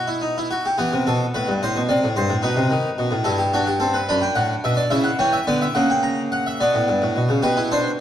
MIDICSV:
0, 0, Header, 1, 2, 480
1, 0, Start_track
1, 0, Key_signature, 1, "minor"
1, 0, Tempo, 555556
1, 683, Time_signature, 6, 3, 24, 8
1, 6914, End_track
2, 0, Start_track
2, 0, Title_t, "Harpsichord"
2, 0, Program_c, 0, 6
2, 0, Note_on_c, 0, 47, 65
2, 64, Note_on_c, 0, 64, 60
2, 186, Note_off_c, 0, 64, 0
2, 186, Note_on_c, 0, 63, 53
2, 309, Note_off_c, 0, 63, 0
2, 326, Note_on_c, 0, 64, 61
2, 402, Note_off_c, 0, 47, 0
2, 437, Note_on_c, 0, 66, 58
2, 441, Note_off_c, 0, 64, 0
2, 557, Note_off_c, 0, 66, 0
2, 567, Note_on_c, 0, 67, 57
2, 661, Note_off_c, 0, 67, 0
2, 671, Note_on_c, 0, 67, 60
2, 677, Note_on_c, 0, 52, 79
2, 678, Note_on_c, 0, 59, 63
2, 797, Note_off_c, 0, 52, 0
2, 801, Note_on_c, 0, 48, 70
2, 824, Note_off_c, 0, 67, 0
2, 919, Note_off_c, 0, 48, 0
2, 923, Note_on_c, 0, 47, 73
2, 925, Note_on_c, 0, 69, 62
2, 1072, Note_off_c, 0, 47, 0
2, 1073, Note_off_c, 0, 69, 0
2, 1161, Note_on_c, 0, 71, 64
2, 1162, Note_on_c, 0, 45, 69
2, 1274, Note_on_c, 0, 43, 69
2, 1278, Note_off_c, 0, 45, 0
2, 1310, Note_off_c, 0, 71, 0
2, 1395, Note_off_c, 0, 43, 0
2, 1405, Note_on_c, 0, 45, 78
2, 1407, Note_on_c, 0, 72, 68
2, 1518, Note_on_c, 0, 47, 77
2, 1520, Note_off_c, 0, 45, 0
2, 1553, Note_off_c, 0, 72, 0
2, 1631, Note_on_c, 0, 48, 71
2, 1631, Note_on_c, 0, 74, 55
2, 1636, Note_off_c, 0, 47, 0
2, 1751, Note_off_c, 0, 48, 0
2, 1759, Note_on_c, 0, 45, 76
2, 1781, Note_off_c, 0, 74, 0
2, 1869, Note_on_c, 0, 43, 76
2, 1870, Note_on_c, 0, 72, 59
2, 1875, Note_off_c, 0, 45, 0
2, 1982, Note_on_c, 0, 45, 76
2, 1989, Note_off_c, 0, 43, 0
2, 2021, Note_off_c, 0, 72, 0
2, 2080, Note_off_c, 0, 59, 0
2, 2095, Note_on_c, 0, 63, 69
2, 2098, Note_on_c, 0, 47, 84
2, 2101, Note_on_c, 0, 71, 73
2, 2105, Note_off_c, 0, 45, 0
2, 2212, Note_on_c, 0, 48, 73
2, 2223, Note_off_c, 0, 47, 0
2, 2336, Note_on_c, 0, 51, 74
2, 2340, Note_off_c, 0, 48, 0
2, 2489, Note_off_c, 0, 51, 0
2, 2578, Note_on_c, 0, 47, 80
2, 2686, Note_on_c, 0, 45, 83
2, 2700, Note_off_c, 0, 47, 0
2, 2796, Note_off_c, 0, 63, 0
2, 2799, Note_off_c, 0, 71, 0
2, 2801, Note_on_c, 0, 69, 72
2, 2802, Note_on_c, 0, 64, 77
2, 2808, Note_on_c, 0, 43, 86
2, 2812, Note_off_c, 0, 45, 0
2, 2922, Note_on_c, 0, 67, 69
2, 2928, Note_off_c, 0, 69, 0
2, 2957, Note_off_c, 0, 64, 0
2, 3048, Note_off_c, 0, 67, 0
2, 3054, Note_on_c, 0, 66, 62
2, 3058, Note_on_c, 0, 62, 62
2, 3172, Note_on_c, 0, 67, 69
2, 3173, Note_off_c, 0, 66, 0
2, 3206, Note_off_c, 0, 62, 0
2, 3281, Note_on_c, 0, 69, 66
2, 3285, Note_on_c, 0, 60, 69
2, 3292, Note_off_c, 0, 67, 0
2, 3402, Note_on_c, 0, 71, 69
2, 3405, Note_off_c, 0, 69, 0
2, 3437, Note_off_c, 0, 60, 0
2, 3506, Note_off_c, 0, 43, 0
2, 3525, Note_off_c, 0, 71, 0
2, 3531, Note_on_c, 0, 62, 77
2, 3533, Note_on_c, 0, 42, 71
2, 3534, Note_on_c, 0, 83, 95
2, 3645, Note_on_c, 0, 79, 85
2, 3651, Note_off_c, 0, 83, 0
2, 3682, Note_off_c, 0, 42, 0
2, 3761, Note_on_c, 0, 45, 72
2, 3763, Note_on_c, 0, 78, 88
2, 3766, Note_off_c, 0, 79, 0
2, 3914, Note_off_c, 0, 45, 0
2, 3915, Note_off_c, 0, 78, 0
2, 4010, Note_on_c, 0, 47, 77
2, 4012, Note_on_c, 0, 76, 90
2, 4120, Note_on_c, 0, 74, 91
2, 4131, Note_off_c, 0, 76, 0
2, 4161, Note_off_c, 0, 47, 0
2, 4232, Note_off_c, 0, 62, 0
2, 4238, Note_on_c, 0, 49, 83
2, 4238, Note_on_c, 0, 76, 106
2, 4243, Note_on_c, 0, 64, 77
2, 4245, Note_off_c, 0, 74, 0
2, 4352, Note_on_c, 0, 78, 87
2, 4364, Note_off_c, 0, 76, 0
2, 4393, Note_off_c, 0, 49, 0
2, 4397, Note_off_c, 0, 64, 0
2, 4481, Note_off_c, 0, 78, 0
2, 4483, Note_on_c, 0, 52, 71
2, 4485, Note_on_c, 0, 61, 65
2, 4485, Note_on_c, 0, 79, 93
2, 4603, Note_on_c, 0, 76, 95
2, 4608, Note_off_c, 0, 79, 0
2, 4637, Note_off_c, 0, 52, 0
2, 4638, Note_off_c, 0, 61, 0
2, 4727, Note_off_c, 0, 76, 0
2, 4728, Note_on_c, 0, 59, 71
2, 4729, Note_on_c, 0, 50, 68
2, 4729, Note_on_c, 0, 74, 91
2, 4851, Note_off_c, 0, 74, 0
2, 4852, Note_on_c, 0, 76, 91
2, 4882, Note_off_c, 0, 50, 0
2, 4882, Note_off_c, 0, 59, 0
2, 4966, Note_on_c, 0, 78, 100
2, 4969, Note_on_c, 0, 49, 77
2, 4972, Note_on_c, 0, 58, 75
2, 4973, Note_off_c, 0, 76, 0
2, 5090, Note_off_c, 0, 78, 0
2, 5098, Note_on_c, 0, 79, 81
2, 5209, Note_on_c, 0, 82, 91
2, 5216, Note_off_c, 0, 79, 0
2, 5362, Note_off_c, 0, 82, 0
2, 5460, Note_on_c, 0, 78, 88
2, 5577, Note_off_c, 0, 78, 0
2, 5586, Note_on_c, 0, 76, 80
2, 5674, Note_off_c, 0, 49, 0
2, 5675, Note_off_c, 0, 58, 0
2, 5700, Note_off_c, 0, 76, 0
2, 5705, Note_on_c, 0, 47, 73
2, 5707, Note_on_c, 0, 74, 88
2, 5710, Note_on_c, 0, 59, 73
2, 5819, Note_off_c, 0, 47, 0
2, 5825, Note_on_c, 0, 45, 66
2, 5939, Note_off_c, 0, 45, 0
2, 5945, Note_on_c, 0, 43, 59
2, 6059, Note_off_c, 0, 43, 0
2, 6065, Note_on_c, 0, 45, 72
2, 6180, Note_off_c, 0, 45, 0
2, 6184, Note_on_c, 0, 47, 58
2, 6298, Note_on_c, 0, 49, 58
2, 6300, Note_off_c, 0, 47, 0
2, 6404, Note_off_c, 0, 74, 0
2, 6406, Note_off_c, 0, 59, 0
2, 6414, Note_on_c, 0, 67, 95
2, 6417, Note_on_c, 0, 47, 82
2, 6417, Note_on_c, 0, 71, 74
2, 6418, Note_off_c, 0, 49, 0
2, 6536, Note_off_c, 0, 67, 0
2, 6538, Note_on_c, 0, 64, 87
2, 6570, Note_off_c, 0, 71, 0
2, 6658, Note_off_c, 0, 64, 0
2, 6665, Note_on_c, 0, 72, 79
2, 6667, Note_on_c, 0, 62, 96
2, 6815, Note_off_c, 0, 72, 0
2, 6817, Note_off_c, 0, 62, 0
2, 6914, Note_off_c, 0, 47, 0
2, 6914, End_track
0, 0, End_of_file